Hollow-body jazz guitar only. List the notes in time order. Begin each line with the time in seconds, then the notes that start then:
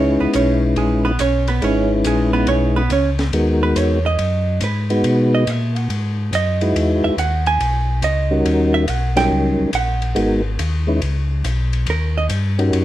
Already playing: C#4 C#5
0.20 B3 B4
0.35 C#4 C#5
0.78 G#3 G#4
1.05 B3 B4
1.20 C#4 C#5
1.48 B3 B4
1.64 C#4 C#5
2.07 G#3 G#4
2.33 B3 B4
2.48 C#4 C#5
2.76 B3 B4
2.92 C#4 C#5
3.63 B4
3.78 C#5
4.06 D#5
4.64 B4
5.35 D#5
5.50 E5
5.77 F#5
6.35 D#5
7.04 E5
7.19 F#5
7.47 G#5
8.04 D#5
8.74 E5
8.90 F#5
9.17 G5
9.75 F#5
11.90 A#4
12.18 D#5